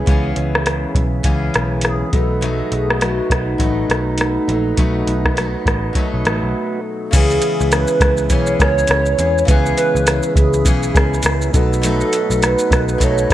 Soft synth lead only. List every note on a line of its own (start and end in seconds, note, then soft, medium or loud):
0.00 0.37 G#4 medium
1.84 2.17 G#4 loud
2.15 2.75 A4 loud
2.73 3.04 G#4 loud
3.02 3.33 F#4 medium
3.31 6.55 D#4 loud
7.14 7.74 G#4 loud
7.72 8.32 B4 loud
8.31 8.60 C#5 loud
8.60 9.44 C#5 loud
9.48 9.76 B4 loud
9.77 10.32 B4 loud
10.36 11.21 G#4 medium
11.86 12.45 A4 loud
12.44 13.04 B4 loud
13.03 13.31 C#5 loud